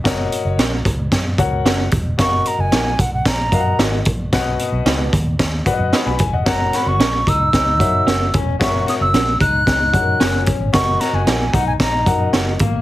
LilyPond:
<<
  \new Staff \with { instrumentName = "Flute" } { \time 4/4 \key fis \mixolydian \tempo 4 = 112 r1 | cis'''8 ais''16 gis''8. fis''16 fis''16 ais''4 r4 | r1 | ais''8 b''16 cis'''8. e'''2 r8 |
cis'''8 dis'''16 e'''8. fis'''2 r8 | cis'''8 ais''16 gis''8. fis''16 gis''16 ais''4 r4 | }
  \new Staff \with { instrumentName = "Grand piano" } { \time 4/4 \key fis \mixolydian << { r1 | r1 | b,4. r4. <b'' dis'''>16 <gis'' b''>16 gis''16 <dis'' fis''>16~ | <dis'' fis''>16 r2. r8. |
r1 | r1 | } \\ { <fis' ais' cis'' dis''>4 r4. <fis' ais' cis'' fis''>4 r8 | <fis' ais' dis'' eis'' fis''>4 r4. <fis' ais' dis'' eis'' fis''>4 r8 | <fis' b' dis'' fis''>4 r4. <fis' b' d'' dis'' fis''>4 r8 | <fis' ais' cis'' fis''>4 r4. <fis' ais' cis'' e''>4 r8 |
<fis' gis' ais' cis'' e''>4 r4. <fis' gis' ais' cis'' fis''>4 r8 | <fis' ais' dis'' fis''>4 r4. <fis' ais' dis'' fis''>4 r8 | } >> }
  \new Staff \with { instrumentName = "Clean electric guitar" } { \time 4/4 \key fis \mixolydian r4 <cis' fis' ais'>8 r4. <cis' fis' ais'>8 r8 | r4 <dis' fis' ais'>8 r4. <dis' fis' ais'>8 r8 | r4 <dis' fis' b'>8 r4. <dis' fis' b'>8 r8 | r4 <cis' fis' ais'>8 r4. <cis' fis' ais'>8 r8 |
r4 <cis' fis' ais'>8 r4. <cis' fis' ais'>8 r8 | r4 <dis' fis' ais'>8 r4. <dis' fis' ais'>8 r8 | }
  \new Staff \with { instrumentName = "Clean electric guitar" } { \time 4/4 \key fis \mixolydian r1 | r1 | r1 | r8 fis'8 r8 dis'8 dis'4 r8 cis'8 |
fis'8 fis'8 r8 dis'8 dis'4 cis'4 | r8 fis'8 r8 dis'8 dis'4 r8 ais8 | }
  \new Staff \with { instrumentName = "Fingered electric bass" } { \clef bass \time 4/4 \key fis \mixolydian fis,,8 r16 fis,,16 ais,,8 cis,8 fis,8 cis,8 fis,,8 e,,8 | fis,,8 r16 fis,,16 ais,,8 b,,8 ais,,8 fis,8 gis,,8 ais,,8 | b,,8 r16 b,,16 cis,8 dis,8 dis,8 r16 fis,16 r16 b,,16 fis,,16 e,,16 | fis,,8 r16 fis,,16 ais,,8 cis,8 cis,8 fis,8 fis,,8 e,,8 |
fis,,8 r16 fis,,16 ais,,8 cis,8 cis,8 fis,8 fis,,8. gis,,16 | fis,,8 r16 fis,,16 ais,,8 b,,8 ais,,8 fis,8 fis,,8 gis,,8 | }
  \new DrumStaff \with { instrumentName = "Drums" } \drummode { \time 4/4 <hh bd sn>8 hh8 <hh sn>8 <hh bd>8 <hh bd sn>8 <hh bd>8 <hh sn>8 <hh bd>8 | <hh bd sn>8 hh8 <hh sn>8 <hh bd>8 <hh bd sn>8 <hh bd>8 <hh sn>8 <hh bd>8 | <hh bd sn>8 hh8 <hh sn>8 <hh bd>8 <hh bd sn>8 <hh bd>8 <hh sn>8 <hh bd>8 | <hh bd sn>8 <hh sn>8 <hh sn>8 <hh bd>8 <hh bd sn>8 <hh bd>8 <hh sn>8 <hh bd>8 |
<hh bd sn>8 <hh sn>8 <hh sn>8 <hh bd>8 <hh bd sn>8 <hh bd>8 <hh sn>8 <hh bd>8 | <hh bd sn>8 <hh sn>8 <hh sn>8 <hh bd>8 <hh bd sn>8 <hh bd>8 <hh sn>8 <hh bd>8 | }
>>